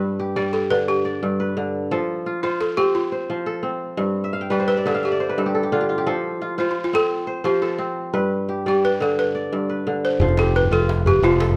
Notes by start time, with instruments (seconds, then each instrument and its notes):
Already playing: kora G2 B4
0.19 kora G4
0.36 kora G3 D5, balafon G4
0.53 balafon A4
0.70 kora D3, balafon B4
0.88 balafon G4
1.05 kora D5
1.23 kora G2
1.40 kora B4
1.57 kora D3
1.91 kora F3 A4
2.26 kora F4
2.43 balafon F4, kora F4 C5
2.61 balafon A4
2.77 kora C4, balafon G4
2.95 balafon F4
3.12 kora C5
3.30 kora F3
3.46 kora A4
3.63 kora C4
3.97 kora G2
4.24 kora E5
4.33 kora F5
4.41 kora G5
4.50 kora G3 B4, balafon G4
4.60 kora C5
4.68 balafon B4, kora E5
4.77 kora D5
4.86 kora D3 E5, balafon A4
4.95 kora F5
5.03 balafon G4, kora E5
5.12 kora D5
5.20 kora C5
5.29 kora B4
5.38 kora G2 A4
5.46 kora G4
5.55 kora A4
5.63 kora G4
5.72 kora D3 F4
5.81 kora G4
5.89 kora F4
5.98 kora G4
6.07 kora F3 A4
6.42 kora F4
6.58 kora F4 C5, balafon F4
6.71 balafon F4
6.84 balafon F4
6.93 kora C4, balafon A4
7.27 kora C5
7.44 kora F3, balafon G4
7.62 balafon F4, kora A4
7.78 kora C4
8.14 kora G2 B4
8.49 kora G4
8.66 kora G3 D5, balafon G4
8.85 balafon B4
9.00 kora D3, balafon A4
9.19 balafon B4
9.35 kora D5
9.53 kora G2
9.69 kora B4
9.87 kora D3
10.05 balafon C5
10.20 fingered electric bass F1, kora F3, djembe bass
10.28 djembe slap, djembe tone
10.37 kora G4, balafon A4, djembe slap
10.55 balafon B4, djembe slap
10.63 djembe bass
10.71 fingered electric bass F1, kora F4, balafon A4
10.80 djembe tone
10.89 djembe slap
10.98 djembe slap
11.06 balafon G4, kora B4, djembe bass
11.15 djembe slap
11.22 fingered electric bass F1, kora F3, balafon F4
11.32 djembe slap, djembe tone
11.40 kora A4, djembe slap
11.49 djembe bass